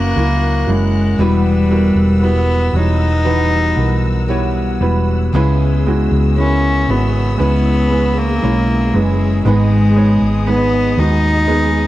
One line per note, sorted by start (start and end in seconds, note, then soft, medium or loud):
0.00 0.13 F#1 medium
0.00 0.16 F#3 medium
0.00 0.71 A#3 medium
0.00 0.16 C#4 medium
0.00 0.17 C#4 medium
0.00 0.17 E4 medium
0.00 0.17 A#4 medium
0.00 1.15 A#4 medium
0.00 0.15 C#5 medium
0.00 5.29 F#5 medium
0.00 1.15 C#6 medium
0.00 1.16 F#6 medium
0.16 0.64 C#2 medium
0.16 1.19 F#3 soft
0.16 0.65 F#3 medium
0.16 0.65 C#4 soft
0.16 1.19 C#4 medium
0.16 0.66 E4 medium
0.16 1.20 E4 medium
0.16 0.66 A#4 medium
0.16 1.20 A#4 medium
0.67 1.15 F#1 medium
0.67 1.16 F#3 medium
0.67 1.23 G#3 medium
0.67 1.17 C#4 medium
0.67 1.17 E4 medium
0.67 1.17 A#4 medium
1.18 1.92 E1 medium
1.18 3.29 E3 medium
1.18 2.70 E3 soft
1.18 5.29 G3 medium
1.18 1.68 G3 medium
1.18 3.23 G3 medium
1.18 2.25 G3 medium
1.18 3.25 B3 medium
1.18 1.68 E4 medium
1.18 1.68 F#4 medium
1.18 3.25 F#4 medium
1.18 1.69 B4 medium
1.18 3.27 B4 medium
1.18 5.29 E6 medium
1.70 2.19 G3 medium
1.70 2.19 E4 medium
1.70 2.20 F#4 medium
1.70 2.20 A#4 medium
1.95 2.69 E1 medium
2.21 2.71 G3 medium
2.21 2.77 B3 medium
2.21 2.71 E4 medium
2.21 2.71 F#4 medium
2.21 2.71 B4 medium
2.73 3.73 E1 medium
2.73 3.23 E3 medium
2.73 3.23 G3 medium
2.73 4.30 D#4 medium
2.73 3.23 F#4 medium
2.73 3.24 C#5 medium
3.24 3.74 E3 medium
3.24 3.74 G3 medium
3.24 4.27 G3 soft
3.24 4.28 B3 soft
3.24 3.74 F#4 medium
3.24 4.28 F#4 medium
3.24 3.75 B4 medium
3.24 4.30 B4 soft
3.76 4.78 B1 medium
3.76 4.26 E3 medium
3.76 4.26 G3 medium
3.76 4.27 F#4 medium
3.76 4.27 A#4 medium
4.28 5.33 G3 medium
4.28 4.79 G3 medium
4.28 5.34 B3 medium
4.28 4.79 E4 medium
4.28 4.79 F#4 medium
4.28 5.34 F#4 medium
4.28 5.35 B4 medium
4.28 4.79 C#5 medium
4.80 5.29 E1 medium
4.80 5.31 G3 medium
4.80 5.31 E4 medium
4.80 5.32 F#4 medium
4.80 5.31 B4 medium
5.33 6.07 C#2 medium
5.33 7.39 C#3 medium
5.33 6.85 C#3 medium
5.33 7.39 G#3 medium
5.33 5.83 G#3 medium
5.33 7.40 B3 medium
5.33 5.84 C#4 medium
5.33 5.84 E4 medium
5.33 7.40 E4 medium
5.33 11.87 G#4 medium
5.33 7.41 G#4 medium
5.33 5.84 B4 loud
5.33 9.42 C#5 medium
5.33 9.42 E6 medium
5.87 6.35 G#3 medium
5.87 6.35 C#4 medium
5.87 6.36 E4 medium
5.87 6.36 F#4 medium
6.11 6.85 C#2 medium
6.38 6.86 G#3 medium
6.38 6.87 C#4 medium
6.38 6.92 C#4 medium
6.38 6.87 E4 medium
6.38 6.87 A#4 medium
6.88 7.36 G#1 medium
6.88 7.36 G#3 medium
6.88 7.40 B3 medium
6.88 7.37 C#4 medium
6.88 7.37 E4 medium
6.88 7.38 F#4 medium
7.38 8.39 C#2 medium
7.38 7.88 G#3 medium
7.38 8.42 G#3 soft
7.38 9.46 B3 soft
7.38 8.19 B3 medium
7.38 7.88 C#4 medium
7.38 7.88 E4 medium
7.38 8.42 E4 medium
7.38 8.43 G#4 medium
7.38 7.89 B4 medium
7.90 8.40 G#3 medium
7.90 8.40 C#4 medium
7.90 8.41 E4 medium
7.90 8.41 B4 medium
8.18 8.95 A#3 medium
8.42 8.91 B1 medium
8.42 9.46 G#3 medium
8.42 8.91 G#3 medium
8.42 8.92 C#4 medium
8.42 8.92 E4 medium
8.42 9.46 E4 medium
8.42 9.48 G#4 medium
8.42 8.92 C#5 medium
8.93 9.42 F#1 medium
8.93 9.45 G#3 medium
8.93 9.43 G#3 medium
8.93 9.43 C#4 medium
8.93 9.43 E4 medium
8.93 9.44 B4 medium
9.45 10.18 G#1 loud
9.45 11.49 G#2 medium
9.45 10.95 G#2 medium
9.45 11.49 D#3 medium
9.45 9.94 G#3 medium
9.45 10.48 G#3 medium
9.45 11.47 G#3 medium
9.45 9.94 B3 medium
9.45 11.48 B3 medium
9.45 9.94 D#4 medium
9.45 11.49 D#4 medium
9.45 11.49 G#4 medium
9.45 9.95 B4 medium
9.45 11.87 D#5 medium
9.45 11.87 D#6 medium
9.96 10.45 G#3 medium
9.96 10.45 B3 medium
9.96 10.45 D#4 medium
9.96 10.45 C#5 medium
10.22 10.94 G#1 medium
10.47 10.96 G#3 medium
10.47 11.01 B3 medium
10.47 10.96 B3 medium
10.47 10.96 D#4 medium
10.47 10.96 B4 medium
10.98 11.87 D#2 medium
10.98 11.46 G#3 medium
10.98 11.46 B3 medium
10.98 11.87 D#4 medium
10.98 11.47 D#4 medium
10.98 11.48 F#4 medium
11.47 11.87 G#3 medium
11.47 11.87 B3 medium
11.47 11.87 D#4 medium
11.47 11.87 G#4 medium